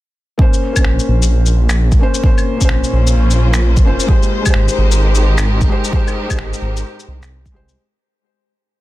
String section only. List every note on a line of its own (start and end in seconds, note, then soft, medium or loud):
2.24 4.08 A#2 medium
2.43 4.73 A#3 medium
2.43 4.09 C#4 medium
2.72 7.78 C5 medium
2.88 5.07 F4 medium
4.08 7.78 G#3 medium
4.30 7.77 D#4 medium
4.52 7.78 G4 medium
4.76 7.77 A#4 medium